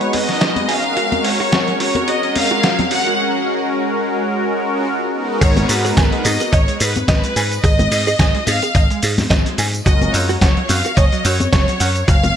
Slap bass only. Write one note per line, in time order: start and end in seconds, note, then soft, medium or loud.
5.41 5.63 G#1 loud
5.69 5.91 G#2 medium
5.97 6.09 G#1 medium
6.25 6.37 G#2 loud
6.53 6.64 G#1 medium
6.81 7.02 G#2 medium
7.08 7.20 G#1 loud
7.36 7.58 G#2 medium
7.64 7.86 G#1 loud
7.91 8.13 G#2 medium
8.19 8.31 G#1 loud
8.47 8.59 G#2 loud
8.75 8.87 G#1 medium
9.03 9.25 G#2 medium
9.30 9.42 G#1 loud
9.58 9.80 G#2 medium
9.86 10.08 F#1 loud
10.14 10.36 F#2 medium
10.42 10.53 F#1 medium
10.69 10.81 F#2 loud
10.97 11.09 F#1 loud
11.25 11.47 F#2 medium
11.53 11.64 F#1 loud
11.80 12.02 F#2 medium
12.08 12.30 F#1 loud